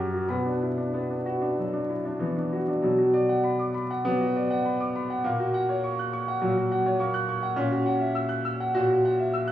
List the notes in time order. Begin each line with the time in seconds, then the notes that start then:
Already playing: F#2 F#4 G4 A#5
0.14 F#4
0.29 B2 B4 F#5 B5
0.46 D4
0.62 E4
0.78 D4
0.94 B3
1.10 D4
1.26 F#4
1.42 D4
1.58 F#3
1.73 D4
1.89 E4
2.05 D4
2.19 E3 B3
2.37 D4
2.53 F#4
2.68 D4
2.82 B2 F#3
2.98 F#4
3.14 D5
3.29 F#5
3.44 B5
3.59 D6
3.74 B5
3.91 F#5
4.05 F#3 B3
4.21 F#4
4.36 D5
4.51 F#5
4.65 B5
4.80 D6
4.96 B5
5.10 F#5
5.24 A#2 A#3
5.40 F#4
5.54 F#5
5.69 C#5
5.84 C#6
5.99 F#6
6.13 C#6
6.28 F#5
6.41 A#2 F#3
6.57 F#4
6.72 F#5
6.86 C#5
6.99 A#3 C#6
7.14 F#6
7.29 C#6
7.43 F#5
7.56 A#2 C#4
7.72 F#4
7.86 F#5
8.00 E5
8.15 E6
8.29 F#6
8.45 E6
8.60 F#5
8.75 A#2 F#4
8.90 F#4
9.05 F#5
9.19 E5
9.34 E6
9.48 F#6